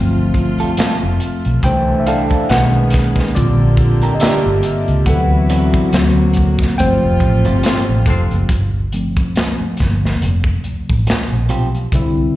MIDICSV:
0, 0, Header, 1, 9, 480
1, 0, Start_track
1, 0, Tempo, 857143
1, 915, Time_signature, 4, 2, 24, 8
1, 6922, End_track
2, 0, Start_track
2, 0, Title_t, "Clean electric guitar"
2, 0, Program_c, 0, 27
2, 335, Note_on_c, 0, 69, 61
2, 338, Note_on_c, 0, 65, 56
2, 340, Note_on_c, 0, 55, 49
2, 340, Note_on_c, 0, 60, 60
2, 392, Note_off_c, 0, 69, 0
2, 393, Note_off_c, 0, 65, 0
2, 394, Note_off_c, 0, 60, 0
2, 395, Note_off_c, 0, 55, 0
2, 437, Note_on_c, 0, 55, 86
2, 438, Note_on_c, 0, 60, 85
2, 441, Note_on_c, 0, 65, 98
2, 442, Note_on_c, 0, 69, 96
2, 536, Note_off_c, 0, 55, 0
2, 537, Note_off_c, 0, 60, 0
2, 538, Note_off_c, 0, 65, 0
2, 539, Note_off_c, 0, 69, 0
2, 1158, Note_on_c, 0, 55, 87
2, 1160, Note_on_c, 0, 62, 90
2, 1161, Note_on_c, 0, 64, 94
2, 1165, Note_on_c, 0, 69, 98
2, 1380, Note_off_c, 0, 55, 0
2, 1381, Note_off_c, 0, 62, 0
2, 1382, Note_off_c, 0, 64, 0
2, 1384, Note_off_c, 0, 69, 0
2, 2256, Note_on_c, 0, 70, 58
2, 2259, Note_on_c, 0, 67, 51
2, 2260, Note_on_c, 0, 62, 51
2, 2261, Note_on_c, 0, 58, 48
2, 2312, Note_off_c, 0, 70, 0
2, 2314, Note_off_c, 0, 67, 0
2, 2315, Note_off_c, 0, 58, 0
2, 2315, Note_off_c, 0, 62, 0
2, 2356, Note_on_c, 0, 58, 87
2, 2357, Note_on_c, 0, 62, 101
2, 2361, Note_on_c, 0, 67, 94
2, 2362, Note_on_c, 0, 70, 94
2, 2456, Note_off_c, 0, 58, 0
2, 2456, Note_off_c, 0, 62, 0
2, 2458, Note_off_c, 0, 67, 0
2, 2458, Note_off_c, 0, 70, 0
2, 3079, Note_on_c, 0, 60, 83
2, 3080, Note_on_c, 0, 64, 94
2, 3083, Note_on_c, 0, 66, 87
2, 3084, Note_on_c, 0, 71, 92
2, 3300, Note_off_c, 0, 60, 0
2, 3301, Note_off_c, 0, 64, 0
2, 3303, Note_off_c, 0, 66, 0
2, 3303, Note_off_c, 0, 71, 0
2, 4175, Note_on_c, 0, 72, 58
2, 4176, Note_on_c, 0, 67, 52
2, 4178, Note_on_c, 0, 65, 48
2, 4181, Note_on_c, 0, 60, 47
2, 4232, Note_off_c, 0, 72, 0
2, 4233, Note_off_c, 0, 67, 0
2, 4234, Note_off_c, 0, 65, 0
2, 4235, Note_off_c, 0, 60, 0
2, 4275, Note_on_c, 0, 60, 75
2, 4277, Note_on_c, 0, 65, 82
2, 4279, Note_on_c, 0, 67, 78
2, 4281, Note_on_c, 0, 72, 87
2, 4375, Note_off_c, 0, 60, 0
2, 4376, Note_off_c, 0, 65, 0
2, 4377, Note_off_c, 0, 67, 0
2, 4378, Note_off_c, 0, 72, 0
2, 6435, Note_on_c, 0, 60, 77
2, 6438, Note_on_c, 0, 65, 71
2, 6439, Note_on_c, 0, 67, 79
2, 6440, Note_on_c, 0, 72, 88
2, 6535, Note_off_c, 0, 60, 0
2, 6537, Note_off_c, 0, 65, 0
2, 6537, Note_off_c, 0, 67, 0
2, 6538, Note_off_c, 0, 72, 0
2, 6922, End_track
3, 0, Start_track
3, 0, Title_t, "Tine electric piano"
3, 0, Program_c, 1, 4
3, 0, Note_on_c, 1, 53, 55
3, 0, Note_on_c, 1, 57, 56
3, 0, Note_on_c, 1, 60, 69
3, 61, Control_c, 1, 64, 127
3, 291, Note_off_c, 1, 53, 0
3, 293, Note_off_c, 1, 57, 0
3, 295, Note_off_c, 1, 60, 0
3, 919, Note_on_c, 1, 79, 109
3, 920, Note_on_c, 1, 52, 56
3, 922, Control_c, 1, 64, 0
3, 923, Note_on_c, 1, 57, 56
3, 926, Note_on_c, 1, 62, 63
3, 929, Note_on_c, 1, 72, 81
3, 1025, Control_c, 1, 64, 127
3, 1114, Note_off_c, 1, 72, 0
3, 1118, Note_on_c, 1, 76, 68
3, 1130, Note_off_c, 1, 79, 0
3, 1153, Note_off_c, 1, 76, 0
3, 1157, Note_on_c, 1, 77, 85
3, 1166, Note_on_c, 1, 69, 65
3, 1251, Note_off_c, 1, 52, 0
3, 1252, Note_off_c, 1, 57, 0
3, 1254, Note_off_c, 1, 62, 0
3, 1384, Note_off_c, 1, 69, 0
3, 1400, Note_on_c, 1, 78, 105
3, 1401, Note_on_c, 1, 51, 56
3, 1403, Note_off_c, 1, 77, 0
3, 1403, Control_c, 1, 64, 0
3, 1404, Note_on_c, 1, 56, 54
3, 1408, Note_on_c, 1, 61, 67
3, 1408, Note_on_c, 1, 71, 72
3, 1501, Control_c, 1, 64, 127
3, 1855, Note_off_c, 1, 51, 0
3, 1855, Note_off_c, 1, 78, 0
3, 1857, Note_off_c, 1, 56, 0
3, 1859, Note_off_c, 1, 61, 0
3, 1859, Note_off_c, 1, 71, 0
3, 1876, Note_on_c, 1, 74, 91
3, 1879, Note_on_c, 1, 50, 61
3, 1881, Control_c, 1, 64, 0
3, 1883, Note_on_c, 1, 55, 53
3, 1886, Note_on_c, 1, 60, 63
3, 1888, Note_on_c, 1, 65, 76
3, 1972, Control_c, 1, 64, 127
3, 2306, Note_off_c, 1, 65, 0
3, 2323, Note_on_c, 1, 75, 64
3, 2335, Note_off_c, 1, 74, 0
3, 2356, Note_off_c, 1, 75, 0
3, 2358, Note_on_c, 1, 76, 98
3, 2370, Note_on_c, 1, 67, 78
3, 2575, Note_off_c, 1, 50, 0
3, 2577, Note_off_c, 1, 55, 0
3, 2578, Note_off_c, 1, 60, 0
3, 2814, Note_off_c, 1, 76, 0
3, 2820, Note_off_c, 1, 67, 0
3, 2835, Note_on_c, 1, 78, 87
3, 2839, Note_on_c, 1, 52, 59
3, 2842, Note_on_c, 1, 54, 56
3, 2843, Control_c, 1, 64, 0
3, 2844, Note_on_c, 1, 59, 55
3, 2845, Note_on_c, 1, 60, 61
3, 2847, Note_on_c, 1, 69, 66
3, 2937, Control_c, 1, 64, 127
3, 3170, Note_off_c, 1, 52, 0
3, 3172, Note_off_c, 1, 54, 0
3, 3173, Note_off_c, 1, 59, 0
3, 3173, Note_off_c, 1, 60, 0
3, 3321, Control_c, 1, 64, 0
3, 3321, Note_on_c, 1, 54, 58
3, 3325, Note_on_c, 1, 58, 52
3, 3329, Note_on_c, 1, 60, 58
3, 3412, Control_c, 1, 64, 127
3, 3532, Note_off_c, 1, 78, 0
3, 3539, Note_off_c, 1, 69, 0
3, 3775, Note_off_c, 1, 54, 0
3, 3777, Note_off_c, 1, 58, 0
3, 3779, Note_off_c, 1, 60, 0
3, 3797, Note_on_c, 1, 79, 105
3, 3801, Note_on_c, 1, 53, 61
3, 3803, Control_c, 1, 64, 0
3, 3804, Note_on_c, 1, 57, 55
3, 3807, Note_on_c, 1, 60, 70
3, 3809, Note_on_c, 1, 72, 88
3, 3918, Control_c, 1, 64, 127
3, 4493, Note_off_c, 1, 79, 0
3, 4496, Note_off_c, 1, 53, 0
3, 4497, Note_off_c, 1, 57, 0
3, 4499, Note_off_c, 1, 60, 0
3, 4499, Note_off_c, 1, 72, 0
3, 4761, Control_c, 1, 64, 0
3, 4852, Control_c, 1, 64, 127
3, 5003, Note_on_c, 1, 53, 49
3, 5006, Note_on_c, 1, 57, 42
3, 5010, Note_on_c, 1, 60, 51
3, 5697, Note_off_c, 1, 53, 0
3, 5698, Note_off_c, 1, 57, 0
3, 5700, Note_off_c, 1, 60, 0
3, 6682, Note_on_c, 1, 50, 70
3, 6683, Control_c, 1, 64, 0
3, 6686, Note_on_c, 1, 55, 62
3, 6689, Note_on_c, 1, 60, 73
3, 6692, Note_on_c, 1, 64, 82
3, 6785, Control_c, 1, 64, 127
3, 6922, Note_off_c, 1, 50, 0
3, 6922, Note_off_c, 1, 55, 0
3, 6922, Note_off_c, 1, 60, 0
3, 6922, Note_off_c, 1, 64, 0
3, 6922, End_track
4, 0, Start_track
4, 0, Title_t, "String section"
4, 0, Program_c, 2, 48
4, 0, Note_on_c, 2, 48, 61
4, 0, Note_on_c, 2, 57, 67
4, 0, Note_on_c, 2, 65, 82
4, 895, Note_off_c, 2, 48, 0
4, 905, Note_off_c, 2, 65, 0
4, 912, Note_on_c, 2, 50, 72
4, 913, Note_on_c, 2, 52, 77
4, 1380, Note_off_c, 2, 57, 0
4, 1388, Note_off_c, 2, 50, 0
4, 1389, Note_off_c, 2, 52, 0
4, 1396, Note_on_c, 2, 59, 63
4, 1397, Note_on_c, 2, 68, 73
4, 1398, Note_on_c, 2, 51, 78
4, 1870, Note_on_c, 2, 58, 70
4, 1870, Note_on_c, 2, 67, 77
4, 1871, Note_off_c, 2, 51, 0
4, 1871, Note_off_c, 2, 59, 0
4, 1871, Note_off_c, 2, 68, 0
4, 1873, Note_on_c, 2, 50, 79
4, 2823, Note_off_c, 2, 58, 0
4, 2823, Note_off_c, 2, 67, 0
4, 2824, Note_off_c, 2, 50, 0
4, 2834, Note_on_c, 2, 71, 61
4, 2835, Note_on_c, 2, 64, 59
4, 2835, Note_on_c, 2, 66, 73
4, 2836, Note_on_c, 2, 48, 75
4, 3310, Note_off_c, 2, 64, 0
4, 3310, Note_off_c, 2, 71, 0
4, 3316, Note_on_c, 2, 58, 63
4, 3785, Note_off_c, 2, 66, 0
4, 3786, Note_off_c, 2, 48, 0
4, 3791, Note_off_c, 2, 58, 0
4, 3796, Note_on_c, 2, 48, 77
4, 3797, Note_on_c, 2, 55, 67
4, 3798, Note_on_c, 2, 65, 89
4, 4746, Note_off_c, 2, 48, 0
4, 4746, Note_off_c, 2, 55, 0
4, 4747, Note_off_c, 2, 65, 0
4, 6922, End_track
5, 0, Start_track
5, 0, Title_t, "Horn section"
5, 0, Program_c, 3, 61
5, 4275, Note_on_c, 3, 53, 72
5, 4275, Note_on_c, 3, 60, 72
5, 4275, Note_on_c, 3, 65, 78
5, 4276, Note_on_c, 3, 50, 74
5, 4365, Note_off_c, 3, 50, 0
5, 4365, Note_off_c, 3, 53, 0
5, 4365, Note_off_c, 3, 60, 0
5, 4365, Note_off_c, 3, 65, 0
5, 4515, Note_on_c, 3, 53, 64
5, 4515, Note_on_c, 3, 60, 75
5, 4515, Note_on_c, 3, 65, 70
5, 4516, Note_on_c, 3, 50, 61
5, 4674, Note_off_c, 3, 53, 0
5, 4674, Note_off_c, 3, 60, 0
5, 4674, Note_off_c, 3, 65, 0
5, 4675, Note_off_c, 3, 50, 0
5, 6922, End_track
6, 0, Start_track
6, 0, Title_t, "Fingered electric bass"
6, 0, Program_c, 4, 33
6, 0, Note_on_c, 4, 31, 96
6, 359, Note_off_c, 4, 31, 0
6, 577, Note_on_c, 4, 29, 87
6, 659, Note_off_c, 4, 29, 0
6, 818, Note_on_c, 4, 35, 86
6, 900, Note_off_c, 4, 35, 0
6, 915, Note_on_c, 4, 36, 93
6, 1311, Note_off_c, 4, 36, 0
6, 1401, Note_on_c, 4, 35, 111
6, 1794, Note_off_c, 4, 35, 0
6, 1890, Note_on_c, 4, 34, 100
6, 2280, Note_off_c, 4, 34, 0
6, 2497, Note_on_c, 4, 31, 90
6, 2580, Note_off_c, 4, 31, 0
6, 2735, Note_on_c, 4, 37, 85
6, 2818, Note_off_c, 4, 37, 0
6, 2836, Note_on_c, 4, 38, 97
6, 3231, Note_off_c, 4, 38, 0
6, 3318, Note_on_c, 4, 38, 100
6, 3712, Note_off_c, 4, 38, 0
6, 3810, Note_on_c, 4, 31, 90
6, 3918, Note_off_c, 4, 31, 0
6, 3938, Note_on_c, 4, 29, 81
6, 4020, Note_off_c, 4, 29, 0
6, 4036, Note_on_c, 4, 33, 96
6, 4149, Note_off_c, 4, 33, 0
6, 4174, Note_on_c, 4, 31, 87
6, 4258, Note_off_c, 4, 31, 0
6, 4416, Note_on_c, 4, 33, 78
6, 4499, Note_off_c, 4, 33, 0
6, 4514, Note_on_c, 4, 29, 86
6, 4628, Note_off_c, 4, 29, 0
6, 4658, Note_on_c, 4, 30, 90
6, 4740, Note_off_c, 4, 30, 0
6, 4756, Note_on_c, 4, 31, 87
6, 5151, Note_off_c, 4, 31, 0
6, 5493, Note_on_c, 4, 31, 79
6, 5683, Note_off_c, 4, 31, 0
6, 5720, Note_on_c, 4, 29, 80
6, 5916, Note_off_c, 4, 29, 0
6, 6104, Note_on_c, 4, 33, 81
6, 6184, Note_off_c, 4, 33, 0
6, 6338, Note_on_c, 4, 34, 70
6, 6441, Note_off_c, 4, 34, 0
6, 6441, Note_on_c, 4, 35, 72
6, 6636, Note_off_c, 4, 35, 0
6, 6678, Note_on_c, 4, 36, 82
6, 6875, Note_off_c, 4, 36, 0
6, 6922, End_track
7, 0, Start_track
7, 0, Title_t, "Muted clean electric guitar strokes"
7, 6199, Note_on_c, 9, 29, 33
7, 6255, Note_off_c, 9, 29, 0
7, 6922, End_track
8, 0, Start_track
8, 0, Title_t, "Muted fingered electric bass strokes"
8, 439, Note_on_c, 9, 29, 49
8, 495, Note_off_c, 9, 29, 0
8, 2360, Note_on_c, 9, 29, 51
8, 2416, Note_off_c, 9, 29, 0
8, 5379, Note_on_c, 9, 29, 49
8, 5435, Note_off_c, 9, 29, 0
8, 6922, End_track
9, 0, Start_track
9, 0, Title_t, "Drums"
9, 190, Note_on_c, 9, 42, 53
9, 192, Note_on_c, 9, 36, 86
9, 246, Note_off_c, 9, 42, 0
9, 248, Note_off_c, 9, 36, 0
9, 327, Note_on_c, 9, 42, 39
9, 383, Note_off_c, 9, 42, 0
9, 432, Note_on_c, 9, 42, 88
9, 448, Note_on_c, 9, 38, 118
9, 488, Note_off_c, 9, 42, 0
9, 504, Note_off_c, 9, 38, 0
9, 671, Note_on_c, 9, 42, 70
9, 727, Note_off_c, 9, 42, 0
9, 810, Note_on_c, 9, 42, 38
9, 866, Note_off_c, 9, 42, 0
9, 911, Note_on_c, 9, 42, 82
9, 913, Note_on_c, 9, 36, 110
9, 967, Note_off_c, 9, 42, 0
9, 969, Note_off_c, 9, 36, 0
9, 1156, Note_on_c, 9, 42, 73
9, 1212, Note_off_c, 9, 42, 0
9, 1288, Note_on_c, 9, 42, 33
9, 1292, Note_on_c, 9, 36, 91
9, 1344, Note_off_c, 9, 42, 0
9, 1348, Note_off_c, 9, 36, 0
9, 1396, Note_on_c, 9, 42, 73
9, 1406, Note_on_c, 9, 38, 97
9, 1452, Note_off_c, 9, 42, 0
9, 1462, Note_off_c, 9, 38, 0
9, 1626, Note_on_c, 9, 42, 75
9, 1646, Note_on_c, 9, 38, 35
9, 1647, Note_on_c, 9, 36, 87
9, 1682, Note_off_c, 9, 42, 0
9, 1702, Note_off_c, 9, 38, 0
9, 1703, Note_off_c, 9, 36, 0
9, 1767, Note_on_c, 9, 42, 38
9, 1769, Note_on_c, 9, 36, 92
9, 1786, Note_on_c, 9, 38, 42
9, 1823, Note_off_c, 9, 42, 0
9, 1825, Note_off_c, 9, 36, 0
9, 1842, Note_off_c, 9, 38, 0
9, 1881, Note_on_c, 9, 42, 78
9, 1888, Note_on_c, 9, 36, 88
9, 1937, Note_off_c, 9, 42, 0
9, 1944, Note_off_c, 9, 36, 0
9, 2112, Note_on_c, 9, 42, 51
9, 2113, Note_on_c, 9, 36, 77
9, 2168, Note_off_c, 9, 42, 0
9, 2169, Note_off_c, 9, 36, 0
9, 2249, Note_on_c, 9, 42, 36
9, 2305, Note_off_c, 9, 42, 0
9, 2351, Note_on_c, 9, 42, 86
9, 2367, Note_on_c, 9, 38, 113
9, 2407, Note_off_c, 9, 42, 0
9, 2423, Note_off_c, 9, 38, 0
9, 2592, Note_on_c, 9, 42, 72
9, 2648, Note_off_c, 9, 42, 0
9, 2732, Note_on_c, 9, 42, 32
9, 2788, Note_off_c, 9, 42, 0
9, 2834, Note_on_c, 9, 36, 113
9, 2834, Note_on_c, 9, 42, 87
9, 2890, Note_off_c, 9, 36, 0
9, 2890, Note_off_c, 9, 42, 0
9, 3077, Note_on_c, 9, 42, 72
9, 3133, Note_off_c, 9, 42, 0
9, 3212, Note_on_c, 9, 42, 38
9, 3213, Note_on_c, 9, 36, 92
9, 3268, Note_off_c, 9, 42, 0
9, 3269, Note_off_c, 9, 36, 0
9, 3319, Note_on_c, 9, 42, 75
9, 3328, Note_on_c, 9, 38, 107
9, 3375, Note_off_c, 9, 42, 0
9, 3384, Note_off_c, 9, 38, 0
9, 3547, Note_on_c, 9, 42, 68
9, 3568, Note_on_c, 9, 36, 78
9, 3603, Note_off_c, 9, 42, 0
9, 3624, Note_off_c, 9, 36, 0
9, 3689, Note_on_c, 9, 36, 101
9, 3689, Note_on_c, 9, 42, 36
9, 3708, Note_on_c, 9, 38, 39
9, 3745, Note_off_c, 9, 36, 0
9, 3745, Note_off_c, 9, 42, 0
9, 3764, Note_off_c, 9, 38, 0
9, 3801, Note_on_c, 9, 42, 75
9, 3809, Note_on_c, 9, 36, 85
9, 3857, Note_off_c, 9, 42, 0
9, 3865, Note_off_c, 9, 36, 0
9, 4033, Note_on_c, 9, 36, 85
9, 4034, Note_on_c, 9, 42, 52
9, 4089, Note_off_c, 9, 36, 0
9, 4090, Note_off_c, 9, 42, 0
9, 4170, Note_on_c, 9, 42, 37
9, 4226, Note_off_c, 9, 42, 0
9, 4275, Note_on_c, 9, 42, 94
9, 4291, Note_on_c, 9, 38, 119
9, 4331, Note_off_c, 9, 42, 0
9, 4347, Note_off_c, 9, 38, 0
9, 4513, Note_on_c, 9, 36, 95
9, 4514, Note_on_c, 9, 42, 67
9, 4569, Note_off_c, 9, 36, 0
9, 4570, Note_off_c, 9, 42, 0
9, 4653, Note_on_c, 9, 42, 36
9, 4709, Note_off_c, 9, 42, 0
9, 4754, Note_on_c, 9, 36, 108
9, 4754, Note_on_c, 9, 42, 70
9, 4810, Note_off_c, 9, 36, 0
9, 4810, Note_off_c, 9, 42, 0
9, 4997, Note_on_c, 9, 42, 60
9, 5053, Note_off_c, 9, 42, 0
9, 5131, Note_on_c, 9, 42, 51
9, 5134, Note_on_c, 9, 36, 91
9, 5187, Note_off_c, 9, 42, 0
9, 5190, Note_off_c, 9, 36, 0
9, 5239, Note_on_c, 9, 42, 61
9, 5249, Note_on_c, 9, 38, 97
9, 5295, Note_off_c, 9, 42, 0
9, 5305, Note_off_c, 9, 38, 0
9, 5471, Note_on_c, 9, 42, 62
9, 5490, Note_on_c, 9, 36, 82
9, 5490, Note_on_c, 9, 38, 28
9, 5527, Note_off_c, 9, 42, 0
9, 5546, Note_off_c, 9, 36, 0
9, 5546, Note_off_c, 9, 38, 0
9, 5630, Note_on_c, 9, 38, 39
9, 5686, Note_off_c, 9, 38, 0
9, 5723, Note_on_c, 9, 42, 66
9, 5779, Note_off_c, 9, 42, 0
9, 5846, Note_on_c, 9, 36, 92
9, 5902, Note_off_c, 9, 36, 0
9, 5958, Note_on_c, 9, 42, 50
9, 6014, Note_off_c, 9, 42, 0
9, 6101, Note_on_c, 9, 36, 85
9, 6157, Note_off_c, 9, 36, 0
9, 6199, Note_on_c, 9, 42, 82
9, 6216, Note_on_c, 9, 38, 107
9, 6255, Note_off_c, 9, 42, 0
9, 6272, Note_off_c, 9, 38, 0
9, 6438, Note_on_c, 9, 42, 56
9, 6494, Note_off_c, 9, 42, 0
9, 6578, Note_on_c, 9, 42, 36
9, 6634, Note_off_c, 9, 42, 0
9, 6676, Note_on_c, 9, 36, 105
9, 6677, Note_on_c, 9, 42, 78
9, 6732, Note_off_c, 9, 36, 0
9, 6733, Note_off_c, 9, 42, 0
9, 6922, End_track
0, 0, End_of_file